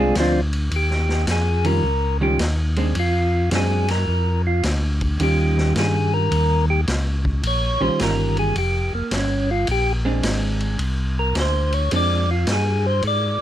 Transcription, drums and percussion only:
0.15 snare, hi-hat pedal, ride
0.53 ride
0.71 ride
0.90 snare
1.09 snare
1.27 snare, hi-hat pedal, ride
1.64 ride
2.39 snare, hi-hat pedal, ride
2.76 ride
2.95 ride
3.51 snare, hi-hat pedal, ride
3.88 snare, ride
4.63 snare, hi-hat pedal, ride
5.01 kick, ride
5.20 ride
5.58 snare
5.76 snare, hi-hat pedal, ride
6.32 ride
6.88 snare, hi-hat pedal, ride
7.25 kick
7.43 ride
7.99 snare, hi-hat pedal, ride
8.37 ride
8.56 ride
9.11 snare, hi-hat pedal, ride
9.67 ride
10.23 snare, hi-hat pedal, ride
10.60 ride
10.79 ride
11.35 snare, hi-hat pedal, ride
11.72 ride
11.91 ride
12.47 snare, hi-hat pedal, ride
13.02 ride

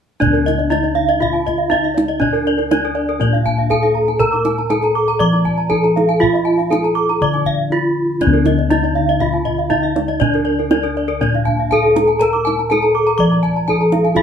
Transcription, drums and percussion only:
0.22 kendang low
0.35 kendang slap
0.48 kendang high
0.59 kendang slap
0.72 kendang high
0.84 kendang slap
1.23 kendang low
1.35 kendang slap
1.48 kendang low
1.73 kendang low
1.85 kendang slap
1.98 kendang high
2.09 kendang slap
2.21 kendang low
2.35 kendang slap
2.59 kendang slap
2.71 kendang high
2.85 kendang slap
3.22 kendang low
3.34 kendang slap
3.47 kendang low
3.72 kendang low
3.83 kendang slap
4.08 kendang slap
4.20 kendang low
4.33 kendang slap
4.45 kendang high
4.59 kendang slap
4.70 kendang high
4.83 kendang slap
5.20 kendang low
5.32 kendang slap
5.46 kendang low
5.71 kendang low
5.84 kendang slap
5.97 kendang high
6.10 kendang slap
6.23 kendang low
6.36 kendang slap
6.60 kendang slap
6.73 kendang high
6.85 kendang slap
7.09 kendang slap
7.22 kendang low
7.34 kendang slap
7.46 kendang low
8.21 kendang low
8.34 kendang slap
8.45 kendang high
8.59 kendang slap
8.71 kendang high
8.83 kendang slap
9.20 kendang low
9.33 kendang slap
9.46 kendang low
9.71 kendang low
9.85 kendang slap
9.96 kendang high
10.08 kendang slap
10.21 kendang low
10.34 kendang slap
10.59 kendang slap
10.71 kendang high
10.84 kendang slap
11.23 kendang low
11.34 kendang slap
11.47 kendang low
11.72 kendang low
11.86 kendang slap
11.96 kendang high
12.09 kendang slap
12.21 kendang low
12.34 kendang slap
12.47 kendang high
12.59 kendang slap
12.72 kendang high
12.84 kendang slap
13.20 kendang low
13.32 kendang slap
13.44 kendang low
13.69 kendang low
13.80 kendang slap
13.92 kendang high
14.05 kendang slap
14.16 kendang high, kendang low

